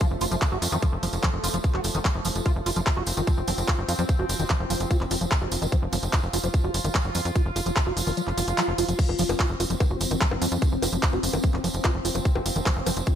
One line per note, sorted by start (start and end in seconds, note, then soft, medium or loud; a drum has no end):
0.00 8.98 F3 medium
0.00 0.07 F3 medium
0.00 2.48 A3 medium
0.00 kick loud
0.00 closed hi-hat medium
0.00 tambourine soft
0.11 0.17 F1 medium
0.21 0.27 F1 loud
0.21 0.25 F4 medium
0.21 open hi-hat loud
0.21 tambourine medium
0.31 0.37 F1 loud
0.31 0.36 F3 medium
0.31 closed hi-hat medium
0.31 tambourine soft
0.42 kick loud
0.42 clap loud
0.42 closed hi-hat medium
0.42 tambourine soft
0.52 0.58 F#1 medium
0.52 0.58 F#4 medium
0.62 0.68 F2 medium
0.62 open hi-hat loud
0.62 tambourine loud
0.72 0.78 F2 medium
0.72 0.77 D#3 medium
0.72 closed hi-hat medium
0.72 tambourine medium
0.82 0.87 F3 medium
0.82 kick loud
0.82 closed hi-hat medium
0.82 tambourine soft
0.93 0.99 F1 medium
1.03 1.09 F1 medium
1.03 1.05 F3 medium
1.03 open hi-hat loud
1.03 tambourine medium
1.13 1.19 F1 loud
1.13 closed hi-hat medium
1.13 tambourine soft
1.23 1.30 F3 medium
1.23 kick loud
1.23 clap loud
1.23 closed hi-hat medium
1.23 tambourine soft
1.33 1.40 F1 medium
1.44 1.50 F1 loud
1.44 1.48 F4 medium
1.44 open hi-hat loud
1.44 tambourine loud
1.54 1.60 F1 medium
1.54 1.58 F3 medium
1.54 closed hi-hat medium
1.54 tambourine soft
1.64 kick loud
1.64 closed hi-hat medium
1.64 tambourine soft
1.74 1.80 F1 medium
1.74 1.81 F#4 medium
1.74 clap soft
1.84 1.91 F1 loud
1.84 open hi-hat loud
1.84 tambourine medium
1.95 2.01 F1 medium
1.95 1.99 D#3 medium
1.95 closed hi-hat medium
1.95 tambourine soft
2.05 2.09 F3 medium
2.05 kick loud
2.05 clap loud
2.05 closed hi-hat medium
2.05 tambourine soft
2.15 2.21 F1 medium
2.25 2.31 F1 medium
2.25 2.28 F3 medium
2.25 open hi-hat loud
2.25 tambourine loud
2.35 2.42 F1 medium
2.35 closed hi-hat medium
2.35 tambourine medium
2.46 5.74 C4 medium
2.46 2.52 F4 medium
2.46 kick loud
2.46 closed hi-hat medium
2.46 tambourine soft
2.56 2.62 F1 medium
2.66 2.72 F1 loud
2.66 2.70 F4 medium
2.66 open hi-hat loud
2.66 tambourine medium
2.76 2.82 F1 loud
2.76 2.81 F3 medium
2.76 closed hi-hat medium
2.76 tambourine medium
2.87 kick loud
2.87 clap loud
2.87 closed hi-hat medium
2.87 tambourine soft
2.97 3.03 F1 medium
2.97 3.03 F#4 medium
3.06 3.13 F1 loud
3.06 open hi-hat loud
3.06 tambourine medium
3.17 3.23 F1 loud
3.17 3.21 D#3 medium
3.17 closed hi-hat medium
3.17 tambourine medium
3.27 3.32 F3 medium
3.27 kick loud
3.27 closed hi-hat medium
3.27 tambourine soft
3.38 3.44 F1 medium
3.47 3.54 F1 medium
3.47 3.50 F3 medium
3.47 open hi-hat loud
3.47 tambourine medium
3.58 3.64 F1 loud
3.58 closed hi-hat medium
3.58 tambourine medium
3.68 3.75 F4 medium
3.68 kick loud
3.68 clap loud
3.68 closed hi-hat medium
3.78 3.84 F#1 medium
3.89 3.95 F2 medium
3.89 3.93 F4 medium
3.89 open hi-hat loud
3.89 tambourine medium
3.99 4.05 F2 medium
3.99 4.03 F3 medium
3.99 closed hi-hat medium
3.99 tambourine medium
4.09 kick loud
4.09 closed hi-hat medium
4.09 tambourine soft
4.19 4.25 F1 medium
4.19 4.26 F#4 medium
4.29 4.35 F1 loud
4.29 open hi-hat loud
4.29 tambourine medium
4.40 4.46 F1 medium
4.40 4.44 D#3 medium
4.40 closed hi-hat medium
4.40 tambourine medium
4.50 4.54 F3 medium
4.50 kick loud
4.50 clap loud
4.50 closed hi-hat medium
4.50 tambourine soft
4.60 4.66 F1 medium
4.70 4.76 F1 loud
4.70 4.73 F3 medium
4.70 open hi-hat loud
4.70 tambourine medium
4.80 4.86 F1 medium
4.80 closed hi-hat medium
4.80 tambourine soft
4.91 4.97 F4 medium
4.91 kick loud
4.91 closed hi-hat medium
4.91 tambourine soft
5.01 5.07 F1 medium
5.01 clap soft
5.11 5.17 F1 loud
5.11 5.15 F4 medium
5.11 open hi-hat loud
5.11 tambourine medium
5.21 5.27 F1 loud
5.21 5.25 F3 medium
5.21 closed hi-hat medium
5.21 tambourine soft
5.31 kick loud
5.31 clap loud
5.31 closed hi-hat medium
5.31 tambourine soft
5.42 5.48 F1 medium
5.42 5.48 F#4 medium
5.51 5.58 F1 medium
5.51 open hi-hat loud
5.51 tambourine loud
5.62 5.68 F1 medium
5.62 5.66 D#3 medium
5.62 closed hi-hat medium
5.62 tambourine medium
5.72 5.76 F3 medium
5.72 9.01 F4 medium
5.72 kick loud
5.72 closed hi-hat medium
5.72 tambourine soft
5.82 5.88 F1 medium
5.93 5.99 F1 loud
5.93 5.95 F3 medium
5.93 open hi-hat medium
5.93 tambourine medium
6.03 6.09 F1 medium
6.03 closed hi-hat medium
6.03 tambourine soft
6.13 6.19 F4 medium
6.13 kick loud
6.13 clap loud
6.13 closed hi-hat medium
6.13 tambourine soft
6.23 6.29 F1 medium
6.33 6.40 F1 loud
6.33 6.38 F4 medium
6.33 open hi-hat loud
6.33 tambourine medium
6.44 6.50 F1 medium
6.44 6.48 F3 medium
6.44 closed hi-hat medium
6.44 tambourine soft
6.54 kick loud
6.54 closed hi-hat medium
6.54 tambourine soft
6.64 6.70 F1 medium
6.64 6.71 F#4 medium
6.74 6.80 F1 loud
6.74 open hi-hat loud
6.74 tambourine medium
6.84 6.91 F1 loud
6.84 6.89 D#3 medium
6.84 closed hi-hat medium
6.84 tambourine medium
6.95 6.99 F3 medium
6.95 kick loud
6.95 clap loud
6.95 closed hi-hat medium
6.95 tambourine soft
7.05 7.11 F#1 medium
7.15 7.21 F2 medium
7.15 7.18 F3 medium
7.15 open hi-hat loud
7.15 tambourine medium
7.25 7.31 F2 medium
7.25 closed hi-hat medium
7.25 tambourine medium
7.35 7.42 F4 medium
7.35 kick loud
7.35 closed hi-hat medium
7.35 tambourine soft
7.46 7.52 F1 medium
7.56 7.62 F1 loud
7.56 7.60 F4 medium
7.56 open hi-hat loud
7.56 tambourine loud
7.66 7.72 F1 medium
7.66 7.70 F3 medium
7.66 closed hi-hat medium
7.66 tambourine medium
7.76 kick loud
7.76 clap loud
7.76 closed hi-hat medium
7.76 tambourine soft
7.87 7.93 F1 medium
7.87 7.93 F#4 medium
7.97 8.03 F1 loud
7.97 open hi-hat loud
7.97 tambourine medium
8.07 8.13 F1 medium
8.07 8.11 D#3 medium
8.07 open hi-hat medium
8.07 tambourine soft
8.17 8.21 F3 medium
8.17 closed hi-hat medium
8.17 tambourine soft
8.17 swell medium
8.27 8.33 F1 medium
8.27 clap soft
8.38 8.44 F1 loud
8.38 8.40 F3 medium
8.38 open hi-hat loud
8.38 tambourine medium
8.48 8.54 F1 loud
8.48 closed hi-hat medium
8.48 tambourine medium
8.58 8.62 F3 medium
8.58 clap loud
8.58 closed hi-hat medium
8.58 tambourine soft
8.68 8.74 F1 medium
8.78 8.84 F1 medium
8.78 8.85 F4 medium
8.78 open hi-hat loud
8.78 tambourine medium
8.89 8.95 F1 medium
8.89 8.93 F3 medium
8.89 closed hi-hat medium
8.89 tambourine medium
8.99 13.15 F3 medium
8.99 9.03 F3 medium
8.99 13.15 C4 medium
8.99 kick loud
8.99 closed hi-hat medium
8.99 crash medium
8.99 tambourine soft
9.09 9.15 F1 medium
9.09 high bongo soft
9.19 9.25 F1 loud
9.19 9.23 F3 loud
9.19 open hi-hat loud
9.19 tambourine medium
9.29 9.35 F1 loud
9.29 closed hi-hat medium
9.29 tambourine medium
9.29 high bongo medium
9.40 9.46 F4 medium
9.40 kick loud
9.40 clap loud
9.40 closed hi-hat medium
9.40 tambourine soft
9.50 9.56 F1 medium
9.60 9.66 F1 loud
9.60 9.64 F4 medium
9.60 open hi-hat loud
9.60 tambourine medium
9.60 high bongo soft
9.70 9.76 F1 loud
9.70 9.74 F3 medium
9.70 closed hi-hat medium
9.70 tambourine medium
9.80 kick loud
9.80 closed hi-hat medium
9.80 tambourine soft
9.80 high bongo medium
9.91 9.97 F1 medium
9.91 9.97 F#4 medium
10.01 10.07 F1 medium
10.01 open hi-hat loud
10.01 tambourine medium
10.11 10.17 F1 medium
10.11 10.15 D#3 medium
10.11 closed hi-hat medium
10.11 tambourine medium
10.11 high bongo soft
10.21 10.25 F3 medium
10.21 kick loud
10.21 clap loud
10.21 closed hi-hat medium
10.31 10.37 F#1 medium
10.31 high bongo medium
10.42 10.48 F2 loud
10.42 10.46 F3 loud
10.42 open hi-hat loud
10.42 tambourine medium
10.51 10.58 F2 medium
10.51 closed hi-hat medium
10.51 tambourine medium
10.62 10.68 F4 medium
10.62 kick loud
10.62 closed hi-hat medium
10.62 tambourine soft
10.62 high bongo soft
10.72 10.78 F1 medium
10.82 10.88 F1 loud
10.82 10.87 F4 medium
10.82 open hi-hat loud
10.82 tambourine loud
10.82 high bongo medium
10.93 10.99 F1 loud
10.93 10.97 F3 medium
10.93 closed hi-hat medium
10.93 tambourine medium
11.02 kick loud
11.02 clap loud
11.02 closed hi-hat medium
11.02 tambourine soft
11.13 11.19 F1 medium
11.13 11.19 F#4 medium
11.13 high bongo soft
11.23 11.29 F1 loud
11.23 open hi-hat loud
11.23 tambourine medium
11.33 11.40 F1 loud
11.33 11.38 D#3 medium
11.33 closed hi-hat medium
11.33 tambourine medium
11.33 high bongo medium
11.43 11.48 F3 medium
11.43 kick loud
11.43 closed hi-hat medium
11.43 tambourine soft
11.54 11.60 F1 medium
11.54 clap soft
11.64 11.70 F1 loud
11.64 11.68 F3 loud
11.64 open hi-hat loud
11.64 tambourine medium
11.64 high bongo soft
11.74 11.80 F1 loud
11.74 closed hi-hat medium
11.74 tambourine medium
11.84 11.91 F4 medium
11.84 kick loud
11.84 clap loud
11.84 closed hi-hat medium
11.84 tambourine soft
11.84 high bongo medium
11.95 12.01 F1 medium
12.05 12.11 F1 loud
12.05 12.09 F4 medium
12.05 open hi-hat loud
12.05 tambourine loud
12.15 12.21 F1 medium
12.15 12.19 F3 medium
12.15 closed hi-hat medium
12.15 tambourine medium
12.15 high bongo soft
12.25 kick loud
12.25 closed hi-hat medium
12.25 tambourine soft
12.35 12.42 F1 medium
12.35 12.42 F#4 medium
12.35 high bongo medium
12.46 12.52 F1 medium
12.46 open hi-hat loud
12.46 tambourine loud
12.56 12.62 F1 loud
12.56 12.60 D#3 medium
12.56 closed hi-hat medium
12.56 tambourine medium
12.66 12.70 F3 medium
12.66 kick loud
12.66 clap loud
12.66 closed hi-hat medium
12.66 tambourine soft
12.66 high bongo soft
12.76 12.82 F1 medium
12.86 12.93 F1 loud
12.86 12.91 F3 loud
12.86 open hi-hat loud
12.86 tambourine loud
12.86 high bongo medium
12.97 13.03 F1 medium
12.97 closed hi-hat medium
12.97 tambourine medium
13.06 13.13 F4 medium
13.06 kick loud
13.06 closed hi-hat medium
13.06 tambourine soft